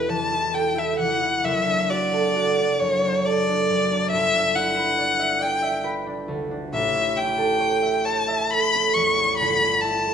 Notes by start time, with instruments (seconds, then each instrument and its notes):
Already playing: harp E1 E2 E4 G4 A4, violin B4
0.09 harp E3, violin A5
0.31 harp E4
0.54 harp A4, violin G5
0.75 harp E4, violin E5
0.99 harp E3, violin F#5
1.20 harp E4
1.43 harp F#1, violin E5
1.66 harp D4
1.90 harp F#4, violin D5
2.13 harp A4
2.36 harp F#4
2.60 harp D4
2.79 harp F#2, violin C#5
3.05 harp D4
3.25 harp A4, violin D5
3.49 harp D4
3.69 harp F#2
3.91 harp D4
4.11 harp G1, violin E5
4.34 harp D4
4.55 harp E4, violin F#5
4.77 harp B4
4.98 harp D5
5.19 harp E5
5.40 harp D5, violin G5
5.62 harp E5
5.84 harp B4
6.06 harp D4
6.28 harp D2
6.51 harp D4
6.72 harp A1, violin E5
6.94 harp C#4
7.16 harp E4, violin G5
7.38 harp A4
7.60 harp C#5
7.82 harp E5
8.04 harp C#5, violin A5
8.28 harp E5
8.51 harp A4, violin B5
8.75 harp C#4
8.94 harp E2, violin C#6
9.18 harp C#4
9.37 harp G1, violin B5
9.63 harp C#4
9.81 harp E4, violin A5
10.07 harp A4